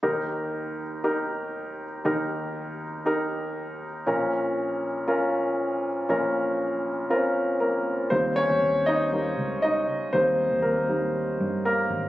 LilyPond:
<<
  \new Staff \with { instrumentName = "Grand piano" } { \time 4/4 \key ees \mixolydian \tempo 4 = 119 << { r1 | r1 | r1 | r2. <bes bes'>4 |
<c' c''>8 <des' des''>4 <ees' ees''>4. <ees' ees''>4 | <c' c''>4 <bes bes'>4. r8 <bes bes'>4 | } \\ { <ees' g' bes'>4. r8 <ees' g' bes'>4. r8 | <ees' g' bes'>4. r8 <ees' g' bes'>4. r8 | <des' f' bes'>4. r8 <des' f' bes'>4. r8 | <des' f' bes'>4. r8 <c' des' f' bes'>4. r8 |
r1 | r1 | } >> }
  \new Staff \with { instrumentName = "Grand piano" } { \clef bass \time 4/4 \key ees \mixolydian <ees, ees>1 | <ees, ees>1 | <bes,, bes,>1 | <bes,, bes,>1 |
<g bes ees'>4. r8 <g bes ees'>8 r4. | <g bes ees'>4. <g bes ees'>8 r2 | }
  \new Staff \with { instrumentName = "Fingered electric bass" } { \clef bass \time 4/4 \key ees \mixolydian r1 | r1 | r1 | r1 |
ees,8. ees,16 ees,4. des,4 r8 | ees,8. ees,16 ees,4. g,4 aes,,8 | }
>>